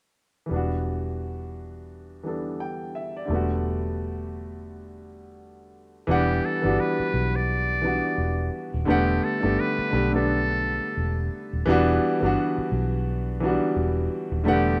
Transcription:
0.46 grand piano E3 G3
0.51 fingered electric bass E1, grand piano B3 D4
0.56 grand piano F#4
2.23 grand piano E3 G3 B3 D4
2.28 grand piano A4
2.60 grand piano G5
2.95 grand piano E5
3.17 grand piano D5
3.25 grand piano D3 G3
3.29 fingered electric bass E1, grand piano A3 B3
3.35 grand piano F#4
6.07 fingered electric bass E1, grand piano E3 G3 B3 D4, muted trumpet G4
6.11 grand piano F#5
6.45 muted trumpet A4
6.62 fingered electric bass G1, grand piano E3 G3 B3 D4
6.66 grand piano F#4
6.80 muted trumpet B4
7.00 muted fingered electric bass stroke
7.14 fingered electric bass B1
7.36 muted trumpet D5
7.81 grand piano E3 G3 B3 D4
7.87 grand piano F#4
8.18 fingered electric bass E1
8.74 fingered electric bass D#1
8.85 fingered electric bass E1, grand piano D3 G3 A3 B3, muted trumpet G4
8.90 grand piano F#5
9.24 muted trumpet A4
9.40 fingered electric bass G1, grand piano D3 G3 A3 B3
9.46 grand piano G4
9.60 muted trumpet B4
9.78 muted fingered electric bass stroke
9.90 fingered electric bass B1, grand piano D3 G3 A3 B3
9.95 grand piano G4
10.12 grand piano D3 G3 A3 B3, muted trumpet A4
10.16 grand piano D4
10.97 fingered electric bass E1
11.53 fingered electric bass D#1
11.66 fingered electric bass E1, grand piano E3 G3 B3 D4
11.70 grand piano F#4
12.20 fingered electric bass G1, grand piano E3 G3 B3
12.24 grand piano D4 F#4
12.58 muted fingered electric bass stroke
12.72 fingered electric bass B1
13.40 grand piano E3 F#3 B3 D4
13.45 grand piano G3 F#4
13.76 fingered electric bass E1
14.32 fingered electric bass D#1
14.44 fingered electric bass E1, grand piano D3 G3 A3 B3
14.48 muted trumpet G4, grand piano F#5

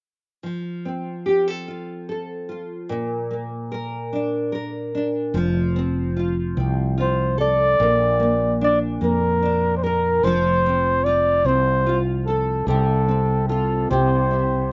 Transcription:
0.43 nylon-string guitar F3
0.85 nylon-string guitar C4
1.26 nylon-string guitar G4
1.48 nylon-string guitar A4
1.68 nylon-string guitar F4
2.09 nylon-string guitar A4
2.49 nylon-string guitar F4
2.89 nylon-string guitar A#2
3.31 nylon-string guitar A#3
3.72 nylon-string guitar A#4
4.13 nylon-string guitar D4
4.52 nylon-string guitar A#4
4.95 nylon-string guitar D4
5.34 fretless electric bass F1, nylon-string guitar F3
5.76 nylon-string guitar C4
6.17 nylon-string guitar F4
6.57 fretless electric bass C2, nylon-string guitar C4
6.98 nylon-string guitar F4, flugelhorn C5
7.38 nylon-string guitar A4, flugelhorn D5
7.80 fretless electric bass A#1, nylon-string guitar A#2
8.20 nylon-string guitar A#3
8.61 nylon-string guitar D4, flugelhorn D5
9.01 fretless electric bass F2, nylon-string guitar A#3, flugelhorn A#4
9.43 nylon-string guitar D4
9.77 flugelhorn C5
9.83 flugelhorn A#4, nylon-string guitar A#4
10.23 fretless electric bass F1, nylon-string guitar F3, flugelhorn C5
10.66 nylon-string guitar C4
11.04 nylon-string guitar F4, flugelhorn D5
11.45 fretless electric bass C2, nylon-string guitar C4, flugelhorn C5
11.86 nylon-string guitar F4
12.26 flugelhorn A4, nylon-string guitar A4
12.67 fretless electric bass C2, nylon-string guitar C3, flugelhorn A4
13.08 nylon-string guitar C4
13.49 nylon-string guitar F4, flugelhorn A4
13.91 fretless electric bass C2, nylon-string guitar C3, flugelhorn C5
14.31 nylon-string guitar E4

